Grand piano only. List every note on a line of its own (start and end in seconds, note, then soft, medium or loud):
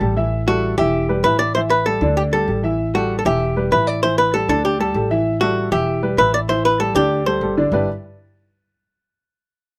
0.01 0.14 G3 medium
0.01 0.14 G4 medium
0.01 0.14 A4 medium
0.16 0.42 E3 medium
0.16 0.42 E4 loud
0.16 0.42 E5 medium
0.47 0.72 G3 medium
0.47 0.73 E4 medium
0.47 0.73 A4 medium
0.79 1.04 E3 loud
0.79 1.04 E4 loud
0.79 1.04 E5 loud
1.09 1.22 G3 medium
1.09 1.22 G4 medium
1.09 1.22 B4 medium
1.25 1.50 E3 medium
1.25 1.50 E4 medium
1.25 1.50 E5 medium
1.56 1.81 E3 medium
1.56 1.81 E4 medium
1.56 1.81 E5 medium
1.87 1.99 G3 medium
1.87 1.99 G4 medium
1.87 2.00 A4 medium
2.02 2.27 D3 medium
2.02 2.27 D4 loud
2.02 2.28 D5 medium
2.33 2.46 G3 medium
2.33 2.46 G4 medium
2.33 2.46 A4 medium
2.48 2.61 G3 medium
2.48 2.61 G4 medium
2.48 2.61 A4 medium
2.63 2.89 E3 medium
2.63 2.89 E4 medium
2.63 2.89 E5 medium
2.94 3.19 G3 medium
2.94 3.20 G4 medium
2.94 3.20 A4 medium
3.25 3.50 E3 medium
3.25 3.51 E4 medium
3.25 3.51 E5 medium
3.56 3.69 G3 medium
3.56 3.69 G4 medium
3.56 3.69 B4 medium
3.72 3.97 E3 medium
3.72 3.97 E4 medium
3.72 3.97 E5 medium
4.03 4.28 E3 medium
4.03 4.28 E4 medium
4.03 4.28 E5 medium
4.34 4.46 G3 medium
4.34 4.46 G4 medium
4.34 4.47 A4 medium
4.49 4.74 D3 medium
4.49 4.74 D4 medium
4.49 4.75 D5 medium
4.79 4.92 G3 medium
4.79 4.92 G4 medium
4.79 4.93 A4 medium
4.95 5.08 G3 medium
4.95 5.08 G4 medium
4.95 5.08 A4 medium
5.10 5.36 E3 medium
5.10 5.36 E4 loud
5.10 5.36 E5 loud
5.41 5.66 G3 medium
5.41 5.67 E4 medium
5.41 5.67 A4 medium
5.72 5.97 E3 medium
5.72 5.97 E4 medium
5.72 5.97 E5 medium
6.03 6.15 G3 medium
6.03 6.15 G4 medium
6.03 6.15 B4 medium
6.18 6.43 E3 medium
6.18 6.43 E4 medium
6.18 6.43 E5 medium
6.49 6.74 E3 medium
6.49 6.74 E4 medium
6.49 6.74 E5 medium
6.80 6.92 G3 medium
6.80 6.93 G4 medium
6.80 6.93 A4 medium
6.96 7.21 D3 medium
6.96 7.21 D4 medium
6.96 7.21 D5 medium
7.26 7.39 G3 medium
7.26 7.39 G4 medium
7.26 7.39 A4 medium
7.42 7.55 G3 medium
7.42 7.55 G4 medium
7.42 7.55 A4 medium
7.57 7.70 D3 medium
7.57 7.70 D4 loud
7.57 7.70 D5 medium
7.72 7.87 G3 medium
7.72 7.87 D4 medium
7.72 7.87 E4 medium
7.72 7.87 G4 medium
7.72 7.87 B4 medium
7.72 7.87 D5 loud